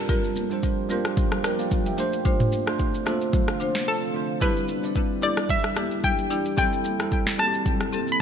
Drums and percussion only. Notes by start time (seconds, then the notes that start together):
0.09 kick, low conga, shaker
0.24 shaker
0.36 high conga, shaker
0.51 shaker
0.63 kick, shaker
0.90 high conga, shaker
1.05 cross-stick, shaker
1.17 kick, low conga, shaker
1.32 cross-stick, shaker
1.44 cross-stick, high conga, shaker
1.59 high conga, shaker
1.71 kick, low conga, shaker
1.86 high conga, shaker
1.98 shaker
2.13 shaker
2.25 kick, low conga, shaker
2.40 mid tom, shaker
2.52 high conga, shaker
2.67 cross-stick, shaker
2.79 kick, shaker
2.94 shaker
3.06 cross-stick, high conga, shaker
3.21 shaker
3.33 kick, low conga, shaker
3.48 cross-stick, shaker
3.60 high conga, shaker
3.75 snare, high conga, shaker
4.41 kick, low conga, shaker
4.57 shaker
4.68 high conga, shaker
4.83 shaker
4.95 kick, shaker
5.22 high conga, shaker
5.37 cross-stick, shaker
5.49 kick, low conga, shaker
5.64 cross-stick, shaker
5.76 cross-stick, high conga, shaker
5.91 high conga, shaker
6.03 kick, low conga, shaker
6.18 high conga, shaker
6.31 shaker
6.45 shaker
6.58 kick, low conga, shaker
6.73 shaker
6.85 high conga, shaker
7.00 cross-stick, shaker
7.12 kick, shaker
7.27 snare
7.39 cross-stick, high conga, shaker
7.54 shaker
7.66 kick, low conga, shaker
7.81 cross-stick, shaker
7.93 high conga, shaker
8.07 high conga, shaker